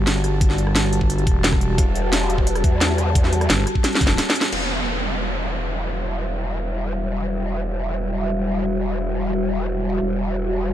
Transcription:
Already playing: G1 G3 F#4 A5
0.07 snare, closed hi-hat
0.24 cross-stick, closed hi-hat
0.41 kick, closed hi-hat
0.50 snare
0.58 closed hi-hat
0.67 cross-stick
0.75 snare, closed hi-hat
0.93 closed hi-hat
1.01 kick
1.10 closed hi-hat
1.18 closed hi-hat
1.27 E1, kick, closed hi-hat
1.44 snare, closed hi-hat
1.53 kick, cross-stick
1.61 closed hi-hat
1.78 E1, kick, closed hi-hat
1.95 closed hi-hat
2.13 snare, closed hi-hat
2.30 closed hi-hat
2.38 kick
2.47 closed hi-hat
2.55 cross-stick, closed hi-hat
2.64 E2, kick, closed hi-hat
2.81 snare, closed hi-hat
2.98 cross-stick, closed hi-hat
3.15 kick, closed hi-hat
3.24 snare
3.33 closed hi-hat
3.41 cross-stick, closed hi-hat
3.50 G1, snare, closed hi-hat
3.67 cross-stick, closed hi-hat
3.75 kick
3.84 snare, closed hi-hat
3.93 snare, closed hi-hat
4.01 F#1, kick, closed hi-hat
4.07 snare, closed hi-hat
4.18 snare, closed hi-hat
4.30 snare
4.35 closed hi-hat
4.41 snare
4.53 E1 G3 F#4 E5, crash, downlifter
10.01 E1 D5

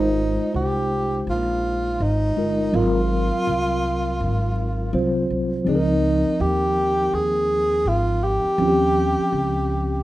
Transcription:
Already playing: G#1 G#3 D#4 F4 C5
0.40 muted upright bass stroke
0.54 C2 G4
1.27 A#1 F4
2.00 G#1 D#4
2.36 G#3 D#4 F4 A#4
2.73 G#1 F#3 C4 F4 A#4
3.32 muted upright bass stroke
3.47 C2
4.20 G#1
4.92 C2 F#3 C4 F4 C5
5.30 C2
5.65 C#2 F3 C4 D#4
5.69 G#4
5.75 A#4
6.40 D#2 G4
7.13 D#2 G#4
7.85 G#1 F4
8.24 G4
8.44 muted upright bass stroke
8.58 D#2 F3 C4 C#4
8.62 F4
8.68 G4
9.18 muted upright bass stroke
9.32 C#2

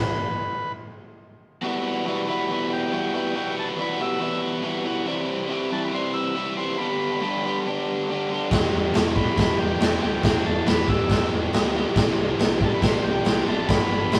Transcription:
Already playing: B4
1.62 E2 B2 E3 G3 B3
1.66 E4
2.05 E2 B2 E3 G3 B3
2.09 E4
2.27 E2 B2 E3 G3 B3 E4 B5
2.49 E2 B2 E3 G3 B3 E4
2.73 G5
2.91 E2 B2 E3 G3 B3
2.95 E4
3.12 E2 B2 E3 G3 B3 G5
3.17 E4
3.33 E2 B2 E3 G3 B3 E4 G5
3.59 A5
3.77 E2 B2 E3 G3 B3
3.81 E4 B5
3.98 E2 B2 E3 G3 B3 E4
4.02 E6
4.18 E2 B2 E3 G3 B3 E4
4.63 E2 B2 E3 G3 B3 E4
4.84 E2 B2 E3 G3 B3 E4
5.05 C3 E3 G3 C4 E4
5.48 C3 E3 G3 C4 E4
5.70 C3 E3 G3 C4 E4 A5
5.84 B5
5.92 C3 E3 G3 C4 E4 C6
6.13 E6
6.35 C3 E3 G3 C4 E4
6.56 C3 E3 G3 C4 E4 C6
6.77 G2 D3 G3 B3 D4 B5
6.81 G4
7.21 G2 D3 G3 B3 D4 G4
7.43 G2 D3 G3 B3 D4 G4
7.65 G2 D3 G3 B3 D4 G4
8.08 G2 D3 G3 B3 D4
8.13 G4
8.29 G2 D3 G3 B3 D4
8.33 G4
8.50 E1 E2 B2 E3 G3 E4, kick, snare, crash
8.54 G4
8.73 E1
8.93 E1 E2 B2 E3 G3 E4 G4, snare, crash
9.14 E2 B2 E3 G3 E4 B5, kick
9.18 G4
9.36 E1 E2 B2 E3 G3 E4, kick, snare, crash
9.40 G4
9.59 E1 G5
9.79 E1 E2 B2 E3 G3 E4 G4, snare, crash
9.99 E2 B2 E3 G3 E4 G5
10.03 D2 G4
10.21 E1 E2 B2 E3 G3 E4 G4 G5, kick, snare, crash
10.46 E1 A5
10.65 E1 E2 B2 E3 G3 E4 G4 B5, snare, crash
10.87 E1 E2 B2 E3 G3 E4 G4 E6, kick
11.08 E1 E2 B2 E3 G3 E4 G4, kick, snare, crash
11.32 E1
11.52 D2 E2 B2 E3 G3 E4, snare, crash
11.56 G4
11.74 E2 B2 E3 G3 E4 G4
11.95 C2 C3 E3 G3 E4 G4, kick, snare, crash
12.18 C2
12.38 C2 C3 E3 G3 E4 G4, snare, crash
12.60 C3 E3 G3 E4 G4, kick
12.65 A5
12.69 A5
12.74 B5
12.80 C2 C3 E3 G3 E4 G4, kick, snare, crash
12.85 C6
13.04 C2 G5
13.23 C2 C3 E3 G3 E4 G4, snare, crash
13.46 A1 C3 E3 G3 E4 G4 A5
13.67 G1 G2 D3 G3 B3 D4 G4 B5, kick, snare, crash
13.90 G1
14.11 G1 G2 D3 G3 B3 D4 G4, snare, crash

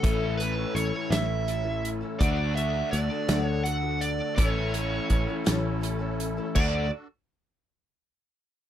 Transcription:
Already playing: A4
0.03 A1 A2 E3 A3 C#4 E4 A4, kick, closed hi-hat
0.37 A3 C#4 B4, closed hi-hat
0.42 E4 A4
0.57 A3 C#4 E4 A4
0.75 A1 C#5, closed hi-hat
0.94 A3 C#4 E4 A4
1.10 A1 A2 E3 A3 C#4 E4 A4 E5, snare, closed hi-hat
1.47 A3 C#4 E4 A4, closed hi-hat
1.64 A3 C#4 E4 A4
1.85 closed hi-hat
2.01 A3 C#4 E4 A4
2.19 D2 D3 A3 D4 F#4 A4 D5, kick, closed hi-hat
2.55 A3 D4 F#4 A4 E5, closed hi-hat
2.74 D4 F#4 A4
2.91 D2 D5, closed hi-hat
3.12 D4 F#4 A4
3.28 D2 D3 A3 D4 F#4 A4, snare, closed hi-hat
3.44 C#5
3.64 A3 D4 F#4 F#5, closed hi-hat
3.68 A4
3.83 D4 F#4 A4
4.01 D5, closed hi-hat
4.18 D4 F#4 A4
4.36 A1 A2 E3 A3 C#4 E4 A4 C#5, kick, closed hi-hat
4.72 A3 C#4 E4 A4, closed hi-hat
4.89 A3 C#4 E4 A4
5.10 A1, kick, closed hi-hat
5.28 A3 C#4 E4 A4
5.44 A1 A2 E3 A3 C#4 E4 A4, snare, closed hi-hat
5.81 A3 C#4 E4 A4, closed hi-hat
5.99 A3 C#4 E4 A4
6.20 closed hi-hat
6.37 A3 C#4 E4 A4
6.55 D2 D3 A3 D4 F#4 A4 D5, kick, crash

